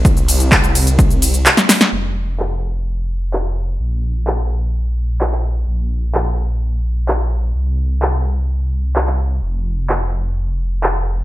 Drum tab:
CC |----------------|x---------------|----------------|----------------|
RD |--x---x---x---x-|----------------|----------------|----------------|
HH |xxoxxxoxxxoxxxox|----------------|----------------|----------------|
SH |xxxxxxxxxxxxxxxx|----------------|----------------|----------------|
CP |----x-------x---|----x-------x---|----x-------xx--|----x-------x---|
SD |-------------ooo|----------------|----------------|----------------|
BD |o---o---o-------|----------------|----------------|----------------|

CC |----------------|----------------|
RD |----------------|----------------|
HH |----------------|----------------|
SH |----------------|----------------|
CP |----x-------xx--|----x-------x---|
SD |----------------|----------------|
BD |----------------|----------------|